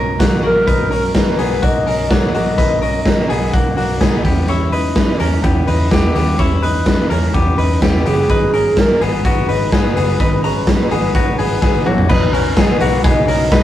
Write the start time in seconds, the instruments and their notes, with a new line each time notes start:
Already playing: fingered electric bass B1, steel-string acoustic guitar B3 D#4 A#4, clean electric guitar C#4 A#4
0.00 steel-string acoustic guitar F#3
0.19 fingered electric bass B1, steel-string acoustic guitar B2 D#3 F#3 B3 D#4 A#4, clean electric guitar A#3 F#4, kick, snare, closed hi-hat
0.43 fingered electric bass A#1, steel-string acoustic guitar F#3 B3 D#4 A#4, clean electric guitar A#3 F#4, soft synth lead A#4
0.67 fingered electric bass B1, steel-string acoustic guitar B2 D#3 F#3 B3 D#4 A#4, clean electric guitar D#4 B4, kick, closed hi-hat
0.90 steel-string acoustic guitar F#3 B3 D#4 A#4, clean electric guitar C#4 A#4, open hi-hat
1.14 steel-string acoustic guitar B2 D#3 F#3 B3 D#4 A#4, soft synth lead B4, kick, snare, closed hi-hat
1.38 fingered electric bass B1, steel-string acoustic guitar F#3 B3 D#4 A#4, clean electric guitar B3 G#4, open hi-hat
1.62 fingered electric bass B1, steel-string acoustic guitar F#3 B3 D#4 A#4, clean electric guitar A#3 F#4, soft synth lead D#5, kick, closed hi-hat
1.86 fingered electric bass B1, steel-string acoustic guitar F#3 B3 D#4 A#4, clean electric guitar C#4 A#4, open hi-hat
2.11 fingered electric bass B1, steel-string acoustic guitar B2 D#3 F#3 B3 D#4 A#4, clean electric guitar A#3 F#4, soft synth lead C#5, kick, snare, closed hi-hat
2.34 fingered electric bass A#1, steel-string acoustic guitar F#3 B3 D#4 A#4, clean electric guitar A#3 F#4, soft synth lead D#5, open hi-hat
2.58 fingered electric bass B1, steel-string acoustic guitar B2 D#3 F#3 B3 D#4 A#4, clean electric guitar D#4 B4, kick, closed hi-hat
2.81 steel-string acoustic guitar F#3 B3 D#4 A#4, clean electric guitar C#4 A#4, open hi-hat
3.05 steel-string acoustic guitar B2 D#3 F#3 B3 D#4 A#4, kick, snare, closed hi-hat
3.29 fingered electric bass B1, steel-string acoustic guitar F#3 B3 D#4 A#4, clean electric guitar B3 G#4, open hi-hat
3.53 fingered electric bass B1, steel-string acoustic guitar F#3 B3 D#4 A#4, clean electric guitar A#3 F#4, kick, closed hi-hat
3.76 fingered electric bass B1, steel-string acoustic guitar F#3 B3 D#4 A#4, clean electric guitar A#3 F#4, open hi-hat
4.00 fingered electric bass B1, steel-string acoustic guitar B2 D#3 F#3 B3 D#4 A#4, clean electric guitar B3 G#4, kick, snare, closed hi-hat
4.24 fingered electric bass E2, clean electric guitar B3 G4, steel-string acoustic guitar C#4 E4, kick, open hi-hat
4.48 steel-string acoustic guitar E3 G3 C#4 E4 B4, clean electric guitar E4 C#5, closed hi-hat
4.71 steel-string acoustic guitar C#4 E4 B4, clean electric guitar D#4 B4, open hi-hat
4.95 steel-string acoustic guitar E3 G3 C#4 E4 B4, kick, snare, closed hi-hat
5.19 fingered electric bass E2, clean electric guitar C#4 A#4, steel-string acoustic guitar C#4 E4 B4, open hi-hat
5.43 fingered electric bass E2, steel-string acoustic guitar G3 C#4 E4 B4, clean electric guitar B3 G4, kick, closed hi-hat
5.67 fingered electric bass E2, steel-string acoustic guitar C#4 E4 B4, clean electric guitar D#4 B4, open hi-hat
5.91 fingered electric bass E2, steel-string acoustic guitar E3 G3 C#4 E4 B4, clean electric guitar B3 G4, kick, snare, closed hi-hat
6.14 fingered electric bass D#2, clean electric guitar B3 G4, steel-string acoustic guitar C#4 E4 B4, open hi-hat
6.38 fingered electric bass E2, steel-string acoustic guitar E3 G3 C#4 E4 B4, clean electric guitar E4 C#5, kick, closed hi-hat
6.62 steel-string acoustic guitar C#4 E4 B4, clean electric guitar D#4 B4, open hi-hat
6.86 steel-string acoustic guitar E3 G3 C#4 E4 B4, kick, snare, closed hi-hat
7.09 fingered electric bass E2, clean electric guitar C#4 A#4, steel-string acoustic guitar C#4 E4 B4, open hi-hat
7.33 fingered electric bass E2, steel-string acoustic guitar G3 C#4 E4 B4, clean electric guitar B3 G4, kick, closed hi-hat
7.57 fingered electric bass E2, steel-string acoustic guitar C#4 E4 B4, clean electric guitar D#4 B4, open hi-hat
7.80 fingered electric bass E2, steel-string acoustic guitar E3 G3 C#4 E4 B4, clean electric guitar B3 G4, kick, snare, closed hi-hat
8.05 fingered electric bass F#1, clean electric guitar B3 G4, steel-string acoustic guitar C#4 B4, soft synth lead G#4, open hi-hat
8.29 fingered electric bass G#1, steel-string acoustic guitar G#2 D#3 F#3 B3 D#4 G#4, clean electric guitar D#4 B4, kick, closed hi-hat
8.52 steel-string acoustic guitar F#3 B3 D#4 G#4, clean electric guitar C#4 A#4, open hi-hat
8.76 steel-string acoustic guitar G#2 D#3 F#3 B3 D#4 G#4, soft synth lead A#4, kick, snare, closed hi-hat
9.01 fingered electric bass G#1, steel-string acoustic guitar F#3 B3 D#4, clean electric guitar B3 G#4, soft synth lead B4, open hi-hat
9.24 fingered electric bass G#1, steel-string acoustic guitar F#3 B3 D#4 G#4, clean electric guitar B3 F#4, kick, closed hi-hat
9.48 fingered electric bass G#1, steel-string acoustic guitar F#3 B3 D#4 G#4, clean electric guitar D#4 B4, open hi-hat
9.71 fingered electric bass G#1, steel-string acoustic guitar G#2 D#3 F#3 B3 D#4 G#4, clean electric guitar B3 G#4, kick, snare, closed hi-hat
9.95 fingered electric bass F#1, steel-string acoustic guitar F#3 B3 D#4 G#4, clean electric guitar B3 G#4, open hi-hat
10.20 fingered electric bass G#1, steel-string acoustic guitar G#2 D#3 F#3 B3 D#4 G#4, clean electric guitar D#4 B4, kick, closed hi-hat
10.44 steel-string acoustic guitar F#3 B3 D#4 G#4, clean electric guitar C#4 A#5, open hi-hat
10.67 steel-string acoustic guitar G#2 D#3 F#3 B3 D#4 G#4, kick, snare, closed hi-hat
10.91 fingered electric bass G#1, steel-string acoustic guitar F#3 B3 D#4 G#4, clean electric guitar B3 G#4, open hi-hat
11.14 fingered electric bass G#1, steel-string acoustic guitar F#3 B3 D#4 G#4, clean electric guitar B3 F#4, kick, closed hi-hat
11.38 fingered electric bass G#1, steel-string acoustic guitar F#3 B3 D#4 G#4, clean electric guitar B3 G#4, soft synth lead B4, open hi-hat
11.62 fingered electric bass G#1, steel-string acoustic guitar G#2 D#3 F#3 B3 D#4 G#4, clean electric guitar B3 G#4, kick, snare
11.85 fingered electric bass A#1, steel-string acoustic guitar F#3 B3 D#4 G#4, clean electric guitar A#3 F#4, soft synth lead C#5, mid tom
11.98 floor tom
12.08 fingered electric bass B1, steel-string acoustic guitar B2 D#3 F#3 B3 D#4, reed electric piano D#4 F#4 B4, clean electric guitar D#4 B4, soft synth lead B4, kick, crash
12.32 steel-string acoustic guitar F#3 B3 D#4, clean electric guitar C#4 A#4, reed electric piano D#4 F#4 B4, open hi-hat
12.55 steel-string acoustic guitar D#3 F#3 B3 D#4, clean electric guitar B3 G#4, reed electric piano D#4 F#4 B4, soft synth lead B4, kick, snare, closed hi-hat
12.80 fingered electric bass B1, steel-string acoustic guitar F#3 B3 D#4, clean electric guitar A#3 F#4, reed electric piano D#4 F#4 B4, open hi-hat
13.04 fingered electric bass B1, steel-string acoustic guitar B2 D#3 F#3 B3 D#4, clean electric guitar B3 G#4, reed electric piano D#4 F#4 B4, soft synth lead D#5, kick, closed hi-hat
13.27 fingered electric bass B1, steel-string acoustic guitar F#3 B3 D#4, clean electric guitar C#4 A#4, reed electric piano D#4 F#4 B4, open hi-hat
13.51 fingered electric bass B1, steel-string acoustic guitar D#3 F#3 B3 D#4, clean electric guitar D#4 B4, soft synth lead D#5, kick, snare, closed hi-hat